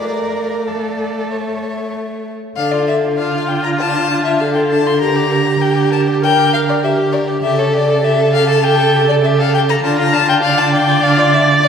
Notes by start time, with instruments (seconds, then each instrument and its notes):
Already playing: violin D5
0.02 viola A3, cello A#4, violin F5
0.67 cello A4
1.31 violin C#5 E5
2.56 cello D3, violin D4 F5, viola A4
2.71 violin F4 D5
2.87 violin D4 E5
3.04 violin F4
3.17 violin D4 F5, viola F4
3.34 violin F4
3.48 violin D4 G5
3.63 violin F4 A#5
3.78 violin D4 A5
3.96 violin F4
4.11 violin D4
4.25 violin F4 E5
4.40 violin D4 F5, viola A4
4.54 violin F4 G5
4.70 violin D4 A5
4.86 violin F4 C6
5.00 viola G4, violin A#4 A#5
5.16 violin G4
5.31 violin A#4
5.46 violin G4
5.60 violin A#4 G5
5.76 violin G4
5.91 violin A#4 A5
6.07 violin G4
6.22 viola A#4, violin A#4 G5
6.39 violin G4
6.54 violin A#4 F5
6.68 violin G4 D5
6.82 viola G4, violin A#4 E5
6.97 violin G4
7.12 violin A#4 D5
7.28 violin G4
7.42 cello C#3, violin G4 E5, viola A4
7.58 violin A4 C#5
7.74 violin G4 D5
7.90 violin A4
8.04 violin G4 E5
8.20 violin A4
8.33 violin G4 F5
8.49 violin A4 A5
8.63 violin G4 G5
8.79 violin A4
8.96 violin G4
9.09 violin A4 D5
9.24 violin G4 E5
9.39 violin A4 F5
9.54 violin G4 G5
9.69 violin A4 A#5
9.83 cello D3, violin D4 A5, viola F4
9.99 violin F4 A#5
10.13 violin D4 A5
10.28 violin F4 G5
10.42 violin D4 F5, viola D5
10.58 violin F4 A5
10.73 violin D4 G5
10.88 violin F4
11.03 violin D4 F5
11.18 violin F4 D5
11.33 violin D4 E5
11.48 violin F4
11.62 violin D4 D5